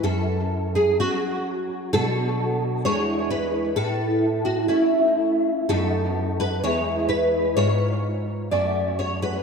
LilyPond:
\new Staff \with { instrumentName = "Nylon-string guitar" } { \time 2/4 \key a \major \tempo 4 = 64 << { a'8. gis'16 fis'4 | a'4 cis''8 b'8 | a'8. fis'16 e'4 | a'8. b'16 cis''8 b'8 |
cis''4 d''8 cis''16 b'16 | } \\ { fis,4 <fis cis'>4 | <b, fis d'>4 <e, gis d'>4 | a,4 <a cis'>4 | <fis, b dis'>4 <e, gis e'>4 |
<gis, b eis'>4 <fis, a fis'>4 | } >> }